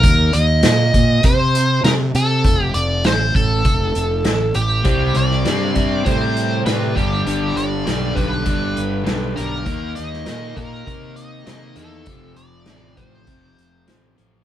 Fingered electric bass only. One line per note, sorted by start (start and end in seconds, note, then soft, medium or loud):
0.04 0.33 D#2 medium
0.34 0.63 D#2 medium
0.63 0.92 A#2 medium
0.95 1.23 A#2 medium
1.24 1.81 C3 medium
1.84 2.13 C3 medium
2.15 2.43 C3 medium
2.45 2.73 F1 medium
2.75 3.03 F1 medium
3.05 3.34 A1 medium
3.35 3.64 A1 medium
3.65 3.94 F1 medium
3.96 4.24 F1 medium
4.26 4.54 A1 medium
4.56 4.84 A1 medium
4.86 5.14 C2 medium
5.16 5.44 C2 medium
5.46 5.75 G2 medium
5.77 6.05 G2 medium
6.07 6.63 A2 medium
6.66 6.94 A2 medium
6.97 7.25 G1 medium
7.26 7.55 G1 medium
7.56 7.85 G1 medium
7.87 8.15 B1 medium
8.17 8.45 B1 medium
8.47 8.75 G1 medium
8.78 9.06 G1 medium
9.08 9.36 B1 medium
9.38 9.66 B1 medium
9.67 9.95 D#2 medium
9.99 10.27 D#2 medium
10.28 10.56 A#2 medium
10.57 10.86 A#2 medium
10.87 11.44 C3 medium
11.47 11.76 C3 medium
11.76 12.09 E2 medium
12.08 12.36 F1 medium
12.37 12.66 F1 medium
12.67 12.96 A1 medium
12.98 13.27 A1 medium
13.28 13.57 F1 medium
13.59 13.87 F1 medium
13.89 14.17 A1 medium
14.19 14.44 A1 medium